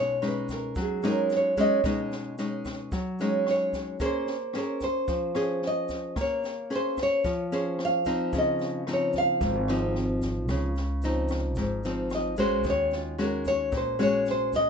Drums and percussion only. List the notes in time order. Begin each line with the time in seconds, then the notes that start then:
0.22 cross-stick, snare
0.48 kick, snare, shaker
0.75 kick, snare, shaker
1.02 cross-stick, snare, shaker
1.30 snare, shaker
1.57 kick, snare, shaker
1.84 kick, cross-stick, snare, shaker
2.12 snare, shaker
2.38 snare, shaker
2.65 kick, cross-stick, snare, shaker
2.92 kick, snare, shaker
3.19 snare, shaker
3.46 cross-stick, snare
3.73 kick, snare, shaker
3.99 kick, snare, shaker
4.27 snare, shaker
4.53 cross-stick, snare
4.80 kick, snare, shaker
5.07 kick, snare, shaker
5.35 cross-stick, snare, shaker
5.62 snare
5.88 kick, snare, shaker
6.16 kick, cross-stick, snare, shaker
6.43 snare, shaker
6.71 snare
6.97 kick, cross-stick, snare, shaker
7.24 kick, snare, shaker
7.52 snare, shaker
7.79 cross-stick, snare
8.05 kick, snare, shaker
8.33 kick, snare, shaker
8.59 snare, shaker
8.87 cross-stick, snare
9.13 kick, snare, shaker
9.41 kick, snare, shaker
9.68 cross-stick, snare, shaker
9.95 snare
10.22 kick, snare, shaker
10.48 kick, cross-stick, snare, shaker
10.75 snare, shaker
11.02 snare, shaker
11.28 kick, cross-stick, snare, shaker
11.55 kick, snare, shaker
11.83 snare, shaker
12.10 cross-stick, snare, shaker
12.37 kick, snare, shaker
12.64 kick, snare, shaker
12.91 snare, shaker
13.19 cross-stick, snare
13.45 kick, snare, shaker
13.72 kick, snare, shaker
13.99 cross-stick, snare, shaker
14.26 snare, shaker
14.53 kick, snare, shaker